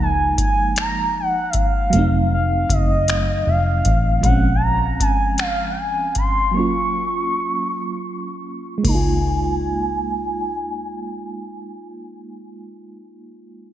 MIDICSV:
0, 0, Header, 1, 6, 480
1, 0, Start_track
1, 0, Key_signature, -5, "major"
1, 0, Tempo, 769231
1, 1198, Time_signature, 6, 3, 24, 8
1, 8570, End_track
2, 0, Start_track
2, 0, Title_t, "Soft synth lead"
2, 0, Program_c, 0, 80
2, 14, Note_on_c, 0, 80, 81
2, 230, Note_off_c, 0, 80, 0
2, 257, Note_on_c, 0, 80, 83
2, 472, Note_off_c, 0, 80, 0
2, 501, Note_on_c, 0, 82, 89
2, 713, Note_off_c, 0, 82, 0
2, 744, Note_on_c, 0, 78, 80
2, 933, Note_on_c, 0, 76, 68
2, 942, Note_off_c, 0, 78, 0
2, 968, Note_on_c, 0, 77, 93
2, 978, Note_off_c, 0, 76, 0
2, 1443, Note_off_c, 0, 77, 0
2, 1460, Note_on_c, 0, 77, 78
2, 1698, Note_on_c, 0, 75, 91
2, 1707, Note_off_c, 0, 77, 0
2, 2177, Note_on_c, 0, 77, 81
2, 2186, Note_off_c, 0, 75, 0
2, 2645, Note_off_c, 0, 77, 0
2, 2649, Note_on_c, 0, 78, 90
2, 2827, Note_off_c, 0, 78, 0
2, 2839, Note_on_c, 0, 81, 69
2, 2883, Note_on_c, 0, 82, 93
2, 2892, Note_off_c, 0, 81, 0
2, 3128, Note_on_c, 0, 80, 87
2, 3137, Note_off_c, 0, 82, 0
2, 3357, Note_off_c, 0, 80, 0
2, 3361, Note_on_c, 0, 77, 82
2, 3562, Note_on_c, 0, 79, 68
2, 3571, Note_off_c, 0, 77, 0
2, 3606, Note_on_c, 0, 80, 82
2, 3616, Note_off_c, 0, 79, 0
2, 3842, Note_off_c, 0, 80, 0
2, 3847, Note_on_c, 0, 84, 96
2, 4082, Note_on_c, 0, 85, 94
2, 4091, Note_off_c, 0, 84, 0
2, 5280, Note_off_c, 0, 85, 0
2, 5534, Note_on_c, 0, 80, 84
2, 7440, Note_off_c, 0, 80, 0
2, 8570, End_track
3, 0, Start_track
3, 0, Title_t, "FM electric piano"
3, 0, Program_c, 1, 5
3, 0, Control_c, 1, 64, 127
3, 0, Note_on_c, 1, 53, 57
3, 0, Note_on_c, 1, 56, 51
3, 0, Note_on_c, 1, 58, 49
3, 0, Note_on_c, 1, 63, 59
3, 1176, Note_off_c, 1, 56, 0
3, 1184, Note_off_c, 1, 58, 0
3, 1186, Note_on_c, 1, 54, 56
3, 1187, Note_off_c, 1, 53, 0
3, 1192, Note_off_c, 1, 63, 0
3, 1204, Note_on_c, 1, 57, 52
3, 1206, Control_c, 1, 64, 0
3, 1221, Note_on_c, 1, 60, 51
3, 1239, Note_on_c, 1, 63, 62
3, 1334, Control_c, 1, 64, 127
3, 2607, Note_off_c, 1, 54, 0
3, 2616, Note_off_c, 1, 57, 0
3, 2625, Note_off_c, 1, 60, 0
3, 2628, Note_on_c, 1, 53, 51
3, 2634, Note_off_c, 1, 63, 0
3, 2645, Note_on_c, 1, 56, 49
3, 2646, Control_c, 1, 64, 0
3, 2664, Note_on_c, 1, 60, 46
3, 2679, Note_on_c, 1, 61, 62
3, 2743, Control_c, 1, 64, 127
3, 4048, Note_off_c, 1, 53, 0
3, 4057, Note_off_c, 1, 56, 0
3, 4064, Note_on_c, 1, 54, 50
3, 4066, Note_off_c, 1, 60, 0
3, 4074, Note_off_c, 1, 61, 0
3, 4081, Note_on_c, 1, 58, 49
3, 4087, Control_c, 1, 64, 0
3, 4100, Note_on_c, 1, 61, 43
3, 4115, Note_on_c, 1, 65, 55
3, 4210, Control_c, 1, 64, 127
3, 5478, Note_on_c, 1, 56, 63
3, 5486, Note_off_c, 1, 54, 0
3, 5495, Note_off_c, 1, 58, 0
3, 5504, Note_off_c, 1, 61, 0
3, 5512, Note_off_c, 1, 65, 0
3, 5513, Note_on_c, 1, 58, 54
3, 5525, Control_c, 1, 64, 0
3, 5547, Note_on_c, 1, 63, 55
3, 5584, Note_on_c, 1, 65, 70
3, 5621, Control_c, 1, 64, 127
3, 7849, Note_off_c, 1, 56, 0
3, 7867, Note_off_c, 1, 58, 0
3, 7884, Note_off_c, 1, 63, 0
3, 7902, Note_off_c, 1, 65, 0
3, 8525, Control_c, 1, 64, 0
3, 8570, End_track
4, 0, Start_track
4, 0, Title_t, "Fingered electric bass"
4, 0, Program_c, 2, 33
4, 0, Note_on_c, 2, 37, 83
4, 214, Note_off_c, 2, 37, 0
4, 1208, Note_on_c, 2, 29, 93
4, 1658, Note_off_c, 2, 29, 0
4, 1684, Note_on_c, 2, 30, 77
4, 2136, Note_off_c, 2, 30, 0
4, 2166, Note_on_c, 2, 29, 72
4, 2379, Note_off_c, 2, 29, 0
4, 2409, Note_on_c, 2, 33, 73
4, 2620, Note_off_c, 2, 33, 0
4, 2645, Note_on_c, 2, 34, 88
4, 3097, Note_off_c, 2, 34, 0
4, 5521, Note_on_c, 2, 37, 73
4, 7871, Note_off_c, 2, 37, 0
4, 8570, End_track
5, 0, Start_track
5, 0, Title_t, "Muted fingered electric bass strokes"
5, 239, Note_on_c, 9, 29, 39
5, 301, Note_off_c, 9, 29, 0
5, 3125, Note_on_c, 9, 29, 38
5, 3187, Note_off_c, 9, 29, 0
5, 8570, End_track
6, 0, Start_track
6, 0, Title_t, "Drums"
6, 237, Note_on_c, 9, 36, 72
6, 239, Note_on_c, 9, 42, 75
6, 300, Note_off_c, 9, 36, 0
6, 301, Note_off_c, 9, 42, 0
6, 476, Note_on_c, 9, 42, 63
6, 485, Note_on_c, 9, 26, 97
6, 538, Note_off_c, 9, 42, 0
6, 547, Note_off_c, 9, 26, 0
6, 957, Note_on_c, 9, 42, 57
6, 963, Note_on_c, 9, 36, 70
6, 1019, Note_off_c, 9, 42, 0
6, 1025, Note_off_c, 9, 36, 0
6, 1203, Note_on_c, 9, 42, 58
6, 1266, Note_off_c, 9, 42, 0
6, 1682, Note_on_c, 9, 36, 72
6, 1686, Note_on_c, 9, 42, 72
6, 1744, Note_off_c, 9, 36, 0
6, 1748, Note_off_c, 9, 42, 0
6, 1922, Note_on_c, 9, 42, 63
6, 1932, Note_on_c, 9, 26, 94
6, 1985, Note_off_c, 9, 42, 0
6, 1994, Note_off_c, 9, 26, 0
6, 2402, Note_on_c, 9, 42, 58
6, 2406, Note_on_c, 9, 36, 70
6, 2464, Note_off_c, 9, 42, 0
6, 2469, Note_off_c, 9, 36, 0
6, 2641, Note_on_c, 9, 36, 99
6, 2643, Note_on_c, 9, 42, 56
6, 2704, Note_off_c, 9, 36, 0
6, 2706, Note_off_c, 9, 42, 0
6, 3121, Note_on_c, 9, 36, 76
6, 3124, Note_on_c, 9, 42, 69
6, 3184, Note_off_c, 9, 36, 0
6, 3186, Note_off_c, 9, 42, 0
6, 3357, Note_on_c, 9, 42, 58
6, 3366, Note_on_c, 9, 26, 94
6, 3419, Note_off_c, 9, 42, 0
6, 3428, Note_off_c, 9, 26, 0
6, 3838, Note_on_c, 9, 42, 55
6, 3844, Note_on_c, 9, 36, 65
6, 3900, Note_off_c, 9, 42, 0
6, 3907, Note_off_c, 9, 36, 0
6, 5520, Note_on_c, 9, 36, 78
6, 5520, Note_on_c, 9, 49, 63
6, 5582, Note_off_c, 9, 36, 0
6, 5583, Note_off_c, 9, 49, 0
6, 8570, End_track
0, 0, End_of_file